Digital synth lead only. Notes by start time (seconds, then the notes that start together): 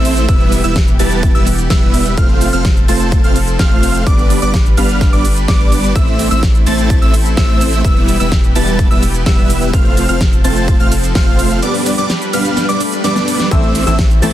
Already playing: E6
0.29 E6
0.64 E6
0.99 A6
1.35 E6
1.70 E6
2.18 F6
2.53 F6
2.88 A6
3.24 F6
3.59 F6
4.07 D6
4.42 D6
4.78 F6
5.13 D6
5.48 D6
5.96 E6
6.31 E6
6.66 A6
7.02 E6
7.37 E6
7.85 E6
8.20 E6
8.55 A6
8.91 E6
9.26 E6
9.74 F6
10.09 F6
10.44 A6
10.80 F6
11.15 F6
11.63 D6
11.98 D6
12.33 F6
12.69 D6
13.04 D6
13.51 E6
13.87 E6
14.22 A6